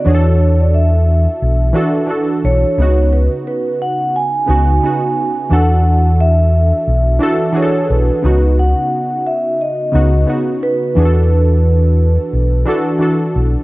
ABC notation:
X:1
M:4/4
L:1/16
Q:"Swing 16ths" 1/4=88
K:Emix
V:1 name="Vibraphone"
c3 d e8 z2 c2- | c2 B2 B2 f2 g2 g6 | f4 e8 c2 B2- | B2 f4 e2 ^d4 z2 B2- |
B12 z4 |]
V:2 name="Synth keys"
[E,DFGA]8 z2 [E,DFA]2 [E,DFA]4 | [C,B,^DF]8 z2 [C,B,DF]2 [C,B,DF]4 | [E,DFA]8 z2 [E,DFA]2 [E,DFGA]4 | [C,B,^DF]8 z2 [C,B,DF]2 [C,B,DF]4 |
[E,DFGA]8 z2 [E,DFA]2 [E,DFA]4 |]
V:3 name="Fingered electric bass" clef=bass
E,,6- E,, z B,,,2 z4 B,,, z | C,,3 z6 z C,,2 z4 | E,,6- E,, z B,,,2 z4 B,,, z | C,,3 z6 z C,,2 z4 |
E,,6- E,, z B,,,2 z4 B,,, z |]